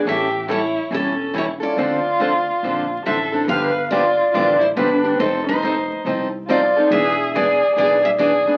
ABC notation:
X:1
M:4/4
L:1/8
Q:"Swing" 1/4=140
K:Gdor
V:1 name="Steel-string acoustic guitar"
e2 ^c2 A2 c d- | d6 e2 | f2 d2 d c =B2 | A c3 z2 d2 |
e2 d2 d e d2 |]
V:2 name="Violin"
G2 E2 ^C2 E F- | F6 A2 | =B2 F2 F E D2 | C _E3 z2 F2 |
^G2 G2 G G G2 |]
V:3 name="Steel-string acoustic guitar"
[E,G,^CEA] z [E,G,CEA] z [E,G,CEA] z [E,G,CEA] [CEA] | [D,F,CDA] z [D,F,CDA] z [D,F,CDA] z [D,F,CDA] [CDA] | [D,F,=B,DG] z [D,F,B,DG] z [D,F,B,DG] z [D,F,B,DG] [B,DG] | [F,C_EA] z [F,CEA] z [F,CEA] z [F,CEA] [CEA] |
[E,=B,D^G] z [E,B,DG] z [E,B,DG] z [E,B,DG] [B,DG] |]
V:4 name="Upright bass" clef=bass
A,,,4 E,,,4 | D,,4 B,,,2 A,,,2 | G,,,4 A,,,2 G,,,2 | F,,,4 C,,4 |
E,,,4 =B,,,4 |]